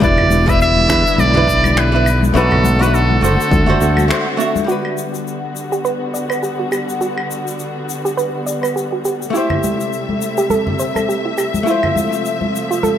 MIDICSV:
0, 0, Header, 1, 7, 480
1, 0, Start_track
1, 0, Key_signature, 1, "major"
1, 0, Tempo, 582524
1, 16, Time_signature, 4, 2, 24, 8
1, 10696, End_track
2, 0, Start_track
2, 0, Title_t, "Muted trumpet"
2, 0, Program_c, 0, 59
2, 33, Note_on_c, 0, 74, 102
2, 410, Note_on_c, 0, 76, 95
2, 422, Note_off_c, 0, 74, 0
2, 504, Note_off_c, 0, 76, 0
2, 512, Note_on_c, 0, 76, 114
2, 989, Note_on_c, 0, 74, 102
2, 1001, Note_off_c, 0, 76, 0
2, 1471, Note_on_c, 0, 71, 89
2, 1483, Note_off_c, 0, 74, 0
2, 1841, Note_off_c, 0, 71, 0
2, 1951, Note_on_c, 0, 69, 94
2, 2325, Note_on_c, 0, 71, 83
2, 2337, Note_off_c, 0, 69, 0
2, 2427, Note_on_c, 0, 69, 88
2, 2439, Note_off_c, 0, 71, 0
2, 2662, Note_off_c, 0, 69, 0
2, 2667, Note_on_c, 0, 69, 88
2, 3349, Note_off_c, 0, 69, 0
2, 10696, End_track
3, 0, Start_track
3, 0, Title_t, "Synth arpeggio sound"
3, 0, Program_c, 1, 84
3, 3857, Note_on_c, 1, 66, 97
3, 3980, Note_off_c, 1, 66, 0
3, 4714, Note_on_c, 1, 67, 88
3, 4812, Note_off_c, 1, 67, 0
3, 4818, Note_on_c, 1, 71, 94
3, 4940, Note_off_c, 1, 71, 0
3, 5057, Note_on_c, 1, 74, 65
3, 5187, Note_off_c, 1, 74, 0
3, 5193, Note_on_c, 1, 71, 70
3, 5286, Note_off_c, 1, 71, 0
3, 5296, Note_on_c, 1, 67, 69
3, 5419, Note_off_c, 1, 67, 0
3, 5432, Note_on_c, 1, 66, 68
3, 5488, Note_off_c, 1, 66, 0
3, 5536, Note_on_c, 1, 67, 68
3, 5659, Note_off_c, 1, 67, 0
3, 5775, Note_on_c, 1, 66, 87
3, 5899, Note_off_c, 1, 66, 0
3, 6633, Note_on_c, 1, 67, 84
3, 6731, Note_off_c, 1, 67, 0
3, 6735, Note_on_c, 1, 71, 95
3, 6859, Note_off_c, 1, 71, 0
3, 6974, Note_on_c, 1, 74, 68
3, 7105, Note_off_c, 1, 74, 0
3, 7114, Note_on_c, 1, 71, 74
3, 7206, Note_off_c, 1, 71, 0
3, 7217, Note_on_c, 1, 67, 64
3, 7340, Note_off_c, 1, 67, 0
3, 7353, Note_on_c, 1, 66, 67
3, 7409, Note_off_c, 1, 66, 0
3, 7458, Note_on_c, 1, 67, 70
3, 7580, Note_off_c, 1, 67, 0
3, 7696, Note_on_c, 1, 64, 91
3, 7820, Note_off_c, 1, 64, 0
3, 8551, Note_on_c, 1, 67, 93
3, 8650, Note_off_c, 1, 67, 0
3, 8655, Note_on_c, 1, 69, 101
3, 8779, Note_off_c, 1, 69, 0
3, 8895, Note_on_c, 1, 72, 67
3, 9026, Note_off_c, 1, 72, 0
3, 9032, Note_on_c, 1, 69, 76
3, 9125, Note_off_c, 1, 69, 0
3, 9135, Note_on_c, 1, 67, 70
3, 9259, Note_off_c, 1, 67, 0
3, 9273, Note_on_c, 1, 64, 73
3, 9329, Note_off_c, 1, 64, 0
3, 9374, Note_on_c, 1, 67, 71
3, 9498, Note_off_c, 1, 67, 0
3, 9615, Note_on_c, 1, 64, 91
3, 9739, Note_off_c, 1, 64, 0
3, 10470, Note_on_c, 1, 65, 89
3, 10570, Note_off_c, 1, 65, 0
3, 10573, Note_on_c, 1, 69, 100
3, 10696, Note_off_c, 1, 69, 0
3, 10696, End_track
4, 0, Start_track
4, 0, Title_t, "Hollow-body jazz guitar"
4, 0, Program_c, 2, 26
4, 1, Note_on_c, 2, 55, 89
4, 11, Note_on_c, 2, 62, 80
4, 22, Note_on_c, 2, 64, 85
4, 30, Note_on_c, 2, 71, 99
4, 353, Note_off_c, 2, 55, 0
4, 358, Note_off_c, 2, 62, 0
4, 363, Note_off_c, 2, 64, 0
4, 367, Note_off_c, 2, 71, 0
4, 379, Note_on_c, 2, 55, 84
4, 390, Note_on_c, 2, 62, 76
4, 398, Note_on_c, 2, 64, 76
4, 409, Note_on_c, 2, 71, 92
4, 705, Note_off_c, 2, 55, 0
4, 710, Note_off_c, 2, 62, 0
4, 714, Note_off_c, 2, 64, 0
4, 720, Note_off_c, 2, 71, 0
4, 722, Note_on_c, 2, 55, 69
4, 732, Note_on_c, 2, 62, 68
4, 741, Note_on_c, 2, 64, 60
4, 752, Note_on_c, 2, 71, 78
4, 1073, Note_off_c, 2, 55, 0
4, 1078, Note_off_c, 2, 62, 0
4, 1083, Note_off_c, 2, 64, 0
4, 1088, Note_off_c, 2, 71, 0
4, 1101, Note_on_c, 2, 55, 85
4, 1109, Note_on_c, 2, 62, 80
4, 1120, Note_on_c, 2, 64, 74
4, 1131, Note_on_c, 2, 71, 97
4, 1554, Note_off_c, 2, 55, 0
4, 1558, Note_off_c, 2, 62, 0
4, 1564, Note_off_c, 2, 64, 0
4, 1569, Note_off_c, 2, 71, 0
4, 1583, Note_on_c, 2, 55, 73
4, 1591, Note_on_c, 2, 62, 61
4, 1602, Note_on_c, 2, 64, 64
4, 1613, Note_on_c, 2, 71, 81
4, 1688, Note_off_c, 2, 55, 0
4, 1692, Note_off_c, 2, 62, 0
4, 1698, Note_off_c, 2, 64, 0
4, 1703, Note_off_c, 2, 71, 0
4, 1925, Note_on_c, 2, 57, 89
4, 1937, Note_on_c, 2, 62, 83
4, 1946, Note_on_c, 2, 66, 85
4, 1955, Note_on_c, 2, 71, 108
4, 2275, Note_off_c, 2, 57, 0
4, 2281, Note_off_c, 2, 62, 0
4, 2285, Note_off_c, 2, 66, 0
4, 2290, Note_off_c, 2, 71, 0
4, 2301, Note_on_c, 2, 57, 88
4, 2311, Note_on_c, 2, 62, 75
4, 2321, Note_on_c, 2, 66, 76
4, 2330, Note_on_c, 2, 71, 97
4, 2626, Note_off_c, 2, 57, 0
4, 2630, Note_off_c, 2, 62, 0
4, 2635, Note_off_c, 2, 66, 0
4, 2640, Note_off_c, 2, 71, 0
4, 2645, Note_on_c, 2, 57, 69
4, 2654, Note_on_c, 2, 62, 63
4, 2665, Note_on_c, 2, 66, 61
4, 2674, Note_on_c, 2, 72, 77
4, 2995, Note_off_c, 2, 57, 0
4, 2999, Note_off_c, 2, 62, 0
4, 3005, Note_off_c, 2, 66, 0
4, 3009, Note_off_c, 2, 72, 0
4, 3019, Note_on_c, 2, 57, 89
4, 3027, Note_on_c, 2, 62, 75
4, 3037, Note_on_c, 2, 66, 81
4, 3047, Note_on_c, 2, 72, 94
4, 3348, Note_off_c, 2, 57, 0
4, 3353, Note_off_c, 2, 62, 0
4, 3358, Note_off_c, 2, 66, 0
4, 3362, Note_off_c, 2, 72, 0
4, 3362, Note_on_c, 2, 57, 69
4, 3371, Note_on_c, 2, 62, 64
4, 3380, Note_on_c, 2, 66, 65
4, 3391, Note_on_c, 2, 72, 79
4, 3502, Note_off_c, 2, 57, 0
4, 3507, Note_off_c, 2, 62, 0
4, 3511, Note_off_c, 2, 66, 0
4, 3517, Note_off_c, 2, 72, 0
4, 3603, Note_on_c, 2, 57, 77
4, 3613, Note_on_c, 2, 62, 71
4, 3622, Note_on_c, 2, 66, 69
4, 3632, Note_on_c, 2, 76, 78
4, 3825, Note_off_c, 2, 57, 0
4, 3826, Note_on_c, 2, 55, 63
4, 3830, Note_off_c, 2, 62, 0
4, 3834, Note_off_c, 2, 66, 0
4, 3840, Note_off_c, 2, 76, 0
4, 3846, Note_on_c, 2, 62, 56
4, 3866, Note_on_c, 2, 66, 57
4, 3885, Note_on_c, 2, 71, 73
4, 7657, Note_off_c, 2, 55, 0
4, 7662, Note_off_c, 2, 62, 0
4, 7665, Note_on_c, 2, 57, 63
4, 7677, Note_off_c, 2, 66, 0
4, 7686, Note_off_c, 2, 71, 0
4, 7686, Note_on_c, 2, 64, 57
4, 7705, Note_on_c, 2, 67, 60
4, 7724, Note_on_c, 2, 72, 69
4, 9576, Note_off_c, 2, 57, 0
4, 9585, Note_on_c, 2, 57, 64
4, 9586, Note_off_c, 2, 64, 0
4, 9596, Note_off_c, 2, 67, 0
4, 9605, Note_on_c, 2, 64, 58
4, 9606, Note_off_c, 2, 72, 0
4, 9624, Note_on_c, 2, 65, 61
4, 9644, Note_on_c, 2, 72, 75
4, 10696, Note_off_c, 2, 57, 0
4, 10696, Note_off_c, 2, 64, 0
4, 10696, Note_off_c, 2, 65, 0
4, 10696, Note_off_c, 2, 72, 0
4, 10696, End_track
5, 0, Start_track
5, 0, Title_t, "String section"
5, 0, Program_c, 3, 48
5, 0, Note_on_c, 3, 55, 62
5, 0, Note_on_c, 3, 59, 63
5, 16, Note_on_c, 3, 50, 69
5, 16, Note_on_c, 3, 64, 78
5, 1902, Note_off_c, 3, 55, 0
5, 1917, Note_off_c, 3, 50, 0
5, 1917, Note_off_c, 3, 64, 0
5, 1936, Note_on_c, 3, 57, 69
5, 1938, Note_on_c, 3, 50, 77
5, 1938, Note_on_c, 3, 66, 81
5, 2864, Note_off_c, 3, 59, 0
5, 2895, Note_on_c, 3, 60, 61
5, 3837, Note_off_c, 3, 57, 0
5, 3838, Note_off_c, 3, 50, 0
5, 3838, Note_off_c, 3, 66, 0
5, 3846, Note_off_c, 3, 60, 0
5, 3855, Note_on_c, 3, 50, 61
5, 3856, Note_on_c, 3, 59, 54
5, 3856, Note_on_c, 3, 66, 62
5, 3857, Note_on_c, 3, 55, 56
5, 7663, Note_off_c, 3, 50, 0
5, 7663, Note_off_c, 3, 59, 0
5, 7663, Note_off_c, 3, 66, 0
5, 7664, Note_off_c, 3, 55, 0
5, 7693, Note_on_c, 3, 48, 61
5, 7694, Note_on_c, 3, 57, 59
5, 7694, Note_on_c, 3, 76, 73
5, 7695, Note_on_c, 3, 55, 61
5, 9596, Note_off_c, 3, 48, 0
5, 9596, Note_off_c, 3, 55, 0
5, 9614, Note_on_c, 3, 48, 60
5, 9614, Note_on_c, 3, 53, 59
5, 10696, Note_off_c, 3, 48, 0
5, 10696, Note_off_c, 3, 53, 0
5, 10696, Note_off_c, 3, 57, 0
5, 10696, Note_off_c, 3, 76, 0
5, 10696, End_track
6, 0, Start_track
6, 0, Title_t, "Fingered electric bass"
6, 0, Program_c, 4, 33
6, 17, Note_on_c, 4, 28, 94
6, 704, Note_off_c, 4, 28, 0
6, 736, Note_on_c, 4, 40, 77
6, 846, Note_off_c, 4, 40, 0
6, 974, Note_on_c, 4, 35, 89
6, 1902, Note_off_c, 4, 35, 0
6, 1935, Note_on_c, 4, 35, 102
6, 2623, Note_off_c, 4, 35, 0
6, 2656, Note_on_c, 4, 30, 80
6, 2766, Note_off_c, 4, 30, 0
6, 2897, Note_on_c, 4, 38, 88
6, 3006, Note_off_c, 4, 38, 0
6, 3137, Note_on_c, 4, 38, 72
6, 3377, Note_off_c, 4, 38, 0
6, 10696, End_track
7, 0, Start_track
7, 0, Title_t, "Drums"
7, 16, Note_on_c, 9, 36, 92
7, 27, Note_on_c, 9, 82, 43
7, 98, Note_off_c, 9, 36, 0
7, 109, Note_off_c, 9, 82, 0
7, 145, Note_on_c, 9, 64, 84
7, 149, Note_on_c, 9, 75, 69
7, 227, Note_off_c, 9, 64, 0
7, 231, Note_off_c, 9, 75, 0
7, 248, Note_on_c, 9, 63, 72
7, 256, Note_on_c, 9, 82, 79
7, 330, Note_off_c, 9, 63, 0
7, 339, Note_off_c, 9, 82, 0
7, 393, Note_on_c, 9, 36, 93
7, 402, Note_on_c, 9, 82, 49
7, 475, Note_off_c, 9, 36, 0
7, 485, Note_off_c, 9, 82, 0
7, 503, Note_on_c, 9, 82, 53
7, 585, Note_off_c, 9, 82, 0
7, 628, Note_on_c, 9, 63, 61
7, 710, Note_off_c, 9, 63, 0
7, 736, Note_on_c, 9, 36, 91
7, 740, Note_on_c, 9, 26, 76
7, 745, Note_on_c, 9, 82, 72
7, 818, Note_off_c, 9, 36, 0
7, 823, Note_off_c, 9, 26, 0
7, 827, Note_off_c, 9, 82, 0
7, 882, Note_on_c, 9, 82, 54
7, 964, Note_off_c, 9, 82, 0
7, 975, Note_on_c, 9, 63, 75
7, 984, Note_on_c, 9, 82, 49
7, 1058, Note_off_c, 9, 63, 0
7, 1066, Note_off_c, 9, 82, 0
7, 1109, Note_on_c, 9, 64, 79
7, 1192, Note_off_c, 9, 64, 0
7, 1216, Note_on_c, 9, 36, 55
7, 1230, Note_on_c, 9, 82, 74
7, 1298, Note_off_c, 9, 36, 0
7, 1312, Note_off_c, 9, 82, 0
7, 1352, Note_on_c, 9, 75, 81
7, 1354, Note_on_c, 9, 63, 52
7, 1363, Note_on_c, 9, 82, 53
7, 1434, Note_off_c, 9, 75, 0
7, 1436, Note_off_c, 9, 63, 0
7, 1445, Note_off_c, 9, 82, 0
7, 1459, Note_on_c, 9, 26, 66
7, 1465, Note_on_c, 9, 82, 47
7, 1541, Note_off_c, 9, 26, 0
7, 1548, Note_off_c, 9, 82, 0
7, 1699, Note_on_c, 9, 75, 78
7, 1706, Note_on_c, 9, 82, 79
7, 1782, Note_off_c, 9, 75, 0
7, 1788, Note_off_c, 9, 82, 0
7, 1835, Note_on_c, 9, 63, 79
7, 1846, Note_on_c, 9, 82, 52
7, 1917, Note_off_c, 9, 63, 0
7, 1929, Note_off_c, 9, 82, 0
7, 1948, Note_on_c, 9, 82, 42
7, 2031, Note_off_c, 9, 82, 0
7, 2068, Note_on_c, 9, 64, 84
7, 2076, Note_on_c, 9, 75, 67
7, 2150, Note_off_c, 9, 64, 0
7, 2158, Note_off_c, 9, 75, 0
7, 2172, Note_on_c, 9, 63, 82
7, 2184, Note_on_c, 9, 82, 77
7, 2255, Note_off_c, 9, 63, 0
7, 2267, Note_off_c, 9, 82, 0
7, 2329, Note_on_c, 9, 82, 58
7, 2412, Note_off_c, 9, 82, 0
7, 2427, Note_on_c, 9, 82, 49
7, 2509, Note_off_c, 9, 82, 0
7, 2561, Note_on_c, 9, 63, 65
7, 2644, Note_off_c, 9, 63, 0
7, 2671, Note_on_c, 9, 82, 85
7, 2753, Note_off_c, 9, 82, 0
7, 2808, Note_on_c, 9, 82, 59
7, 2890, Note_off_c, 9, 82, 0
7, 2896, Note_on_c, 9, 36, 94
7, 2904, Note_on_c, 9, 63, 88
7, 2905, Note_on_c, 9, 82, 44
7, 2979, Note_off_c, 9, 36, 0
7, 2987, Note_off_c, 9, 63, 0
7, 2987, Note_off_c, 9, 82, 0
7, 3044, Note_on_c, 9, 64, 85
7, 3127, Note_off_c, 9, 64, 0
7, 3142, Note_on_c, 9, 82, 77
7, 3225, Note_off_c, 9, 82, 0
7, 3270, Note_on_c, 9, 75, 76
7, 3275, Note_on_c, 9, 63, 62
7, 3285, Note_on_c, 9, 82, 50
7, 3353, Note_off_c, 9, 75, 0
7, 3358, Note_off_c, 9, 63, 0
7, 3368, Note_off_c, 9, 82, 0
7, 3383, Note_on_c, 9, 26, 78
7, 3392, Note_on_c, 9, 82, 49
7, 3465, Note_off_c, 9, 26, 0
7, 3475, Note_off_c, 9, 82, 0
7, 3627, Note_on_c, 9, 82, 80
7, 3709, Note_off_c, 9, 82, 0
7, 3755, Note_on_c, 9, 63, 90
7, 3760, Note_on_c, 9, 82, 54
7, 3838, Note_off_c, 9, 63, 0
7, 3842, Note_off_c, 9, 82, 0
7, 3863, Note_on_c, 9, 82, 43
7, 3945, Note_off_c, 9, 82, 0
7, 3996, Note_on_c, 9, 75, 62
7, 4078, Note_off_c, 9, 75, 0
7, 4103, Note_on_c, 9, 82, 73
7, 4185, Note_off_c, 9, 82, 0
7, 4240, Note_on_c, 9, 82, 47
7, 4322, Note_off_c, 9, 82, 0
7, 4347, Note_on_c, 9, 82, 43
7, 4429, Note_off_c, 9, 82, 0
7, 4583, Note_on_c, 9, 82, 69
7, 4665, Note_off_c, 9, 82, 0
7, 4718, Note_on_c, 9, 82, 45
7, 4801, Note_off_c, 9, 82, 0
7, 4822, Note_on_c, 9, 82, 43
7, 4904, Note_off_c, 9, 82, 0
7, 5068, Note_on_c, 9, 82, 75
7, 5150, Note_off_c, 9, 82, 0
7, 5189, Note_on_c, 9, 75, 70
7, 5205, Note_on_c, 9, 82, 52
7, 5272, Note_off_c, 9, 75, 0
7, 5288, Note_off_c, 9, 82, 0
7, 5301, Note_on_c, 9, 82, 46
7, 5383, Note_off_c, 9, 82, 0
7, 5539, Note_on_c, 9, 75, 61
7, 5541, Note_on_c, 9, 82, 68
7, 5621, Note_off_c, 9, 75, 0
7, 5623, Note_off_c, 9, 82, 0
7, 5680, Note_on_c, 9, 82, 48
7, 5762, Note_off_c, 9, 82, 0
7, 5779, Note_on_c, 9, 82, 42
7, 5861, Note_off_c, 9, 82, 0
7, 5913, Note_on_c, 9, 75, 64
7, 5995, Note_off_c, 9, 75, 0
7, 6024, Note_on_c, 9, 82, 83
7, 6106, Note_off_c, 9, 82, 0
7, 6160, Note_on_c, 9, 82, 56
7, 6243, Note_off_c, 9, 82, 0
7, 6256, Note_on_c, 9, 82, 49
7, 6339, Note_off_c, 9, 82, 0
7, 6506, Note_on_c, 9, 82, 69
7, 6588, Note_off_c, 9, 82, 0
7, 6642, Note_on_c, 9, 82, 49
7, 6724, Note_off_c, 9, 82, 0
7, 6744, Note_on_c, 9, 82, 45
7, 6827, Note_off_c, 9, 82, 0
7, 6982, Note_on_c, 9, 82, 75
7, 7064, Note_off_c, 9, 82, 0
7, 7112, Note_on_c, 9, 75, 55
7, 7124, Note_on_c, 9, 82, 49
7, 7194, Note_off_c, 9, 75, 0
7, 7206, Note_off_c, 9, 82, 0
7, 7229, Note_on_c, 9, 82, 42
7, 7311, Note_off_c, 9, 82, 0
7, 7459, Note_on_c, 9, 82, 66
7, 7541, Note_off_c, 9, 82, 0
7, 7600, Note_on_c, 9, 82, 52
7, 7682, Note_off_c, 9, 82, 0
7, 7704, Note_on_c, 9, 82, 43
7, 7786, Note_off_c, 9, 82, 0
7, 7828, Note_on_c, 9, 64, 80
7, 7830, Note_on_c, 9, 75, 55
7, 7910, Note_off_c, 9, 64, 0
7, 7912, Note_off_c, 9, 75, 0
7, 7941, Note_on_c, 9, 82, 76
7, 7942, Note_on_c, 9, 63, 78
7, 8023, Note_off_c, 9, 82, 0
7, 8024, Note_off_c, 9, 63, 0
7, 8079, Note_on_c, 9, 82, 50
7, 8161, Note_off_c, 9, 82, 0
7, 8182, Note_on_c, 9, 82, 41
7, 8264, Note_off_c, 9, 82, 0
7, 8313, Note_on_c, 9, 63, 59
7, 8396, Note_off_c, 9, 63, 0
7, 8419, Note_on_c, 9, 82, 77
7, 8501, Note_off_c, 9, 82, 0
7, 8549, Note_on_c, 9, 82, 52
7, 8632, Note_off_c, 9, 82, 0
7, 8652, Note_on_c, 9, 63, 83
7, 8658, Note_on_c, 9, 82, 43
7, 8734, Note_off_c, 9, 63, 0
7, 8740, Note_off_c, 9, 82, 0
7, 8790, Note_on_c, 9, 64, 81
7, 8872, Note_off_c, 9, 64, 0
7, 8896, Note_on_c, 9, 82, 69
7, 8978, Note_off_c, 9, 82, 0
7, 9028, Note_on_c, 9, 63, 56
7, 9033, Note_on_c, 9, 75, 58
7, 9036, Note_on_c, 9, 82, 53
7, 9110, Note_off_c, 9, 63, 0
7, 9115, Note_off_c, 9, 75, 0
7, 9118, Note_off_c, 9, 82, 0
7, 9147, Note_on_c, 9, 82, 47
7, 9229, Note_off_c, 9, 82, 0
7, 9379, Note_on_c, 9, 82, 75
7, 9380, Note_on_c, 9, 75, 62
7, 9461, Note_off_c, 9, 82, 0
7, 9462, Note_off_c, 9, 75, 0
7, 9511, Note_on_c, 9, 63, 84
7, 9516, Note_on_c, 9, 82, 51
7, 9593, Note_off_c, 9, 63, 0
7, 9598, Note_off_c, 9, 82, 0
7, 9618, Note_on_c, 9, 82, 48
7, 9700, Note_off_c, 9, 82, 0
7, 9749, Note_on_c, 9, 75, 63
7, 9753, Note_on_c, 9, 64, 76
7, 9831, Note_off_c, 9, 75, 0
7, 9836, Note_off_c, 9, 64, 0
7, 9854, Note_on_c, 9, 63, 78
7, 9868, Note_on_c, 9, 82, 85
7, 9936, Note_off_c, 9, 63, 0
7, 9951, Note_off_c, 9, 82, 0
7, 9995, Note_on_c, 9, 82, 48
7, 10077, Note_off_c, 9, 82, 0
7, 10098, Note_on_c, 9, 82, 48
7, 10180, Note_off_c, 9, 82, 0
7, 10228, Note_on_c, 9, 63, 65
7, 10310, Note_off_c, 9, 63, 0
7, 10348, Note_on_c, 9, 82, 73
7, 10431, Note_off_c, 9, 82, 0
7, 10481, Note_on_c, 9, 82, 49
7, 10563, Note_off_c, 9, 82, 0
7, 10574, Note_on_c, 9, 63, 82
7, 10584, Note_on_c, 9, 82, 46
7, 10657, Note_off_c, 9, 63, 0
7, 10666, Note_off_c, 9, 82, 0
7, 10696, End_track
0, 0, End_of_file